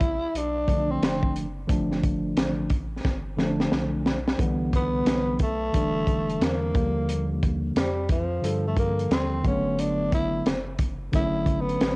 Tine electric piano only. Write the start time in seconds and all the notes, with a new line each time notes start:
0.67 D3 F3 A3 D4
1.68 D3 F3 A3 D4
3.37 D3 F3 A3 C#4
3.46 D4
4.38 D3 E3 G3 B3
5.73 D3 E3 G3 D4
6.74 D3 F3 G3 A#3
8.42 D3 F3 G3 A4
9.43 D3 F#3 A3 B3
11.12 D3 F#3 A3 C#4